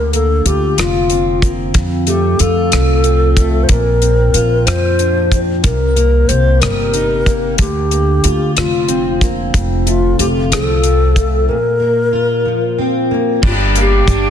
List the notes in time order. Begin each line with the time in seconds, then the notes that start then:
Already playing: D2 D3 A#4
0.13 A#3 A4, closed hi-hat
0.45 D2 F4 G4, closed hi-hat
0.78 F1 F3 F4, cross-stick, closed hi-hat
1.10 C4, closed hi-hat
1.42 A#3, kick, closed hi-hat
1.74 F2, kick, closed hi-hat
2.07 A3 G4, closed hi-hat
2.39 F2 F4 A4, closed hi-hat
2.72 C2 F3, cross-stick, closed hi-hat
3.04 C4, closed hi-hat
3.37 A3, kick, closed hi-hat
3.64 C5
3.69 A#1 A#2 A#4, kick, closed hi-hat
4.02 C4, closed hi-hat
4.34 A#1 F4, closed hi-hat
4.66 F2 F3 C5, cross-stick, closed hi-hat
4.99 D4, closed hi-hat
5.32 C4, kick, closed hi-hat
5.63 C2 C3 A#4, kick, closed hi-hat
5.96 A#3, closed hi-hat
6.28 C2 G4 C5, closed hi-hat
6.61 G1 G3 A#4, cross-stick, closed hi-hat
6.93 D#4, closed hi-hat
7.26 A#3, kick, closed hi-hat
7.58 D2 D3 G4, kick, closed hi-hat
7.91 A#3, closed hi-hat
8.24 D2 F4, closed hi-hat
8.56 F1 F3 F4, cross-stick, closed hi-hat
8.88 C4, closed hi-hat
9.21 A#3, kick, closed hi-hat
9.54 F1 F2, kick, closed hi-hat
9.86 A3 F4, closed hi-hat
10.19 F1 F4 G4, closed hi-hat
10.52 C2 F3 A4, cross-stick, closed hi-hat
10.83 C4, closed hi-hat
11.16 A3, kick, closed hi-hat
11.49 A#2 A#4
11.80 A#3
12.13 F4
12.45 F3
12.79 C4
13.11 A#3
13.43 G1 G2 G3 D4 G4, kick, crash
13.47 F4
13.75 A#3, closed hi-hat
13.80 G4
14.08 G1 D4, kick, closed hi-hat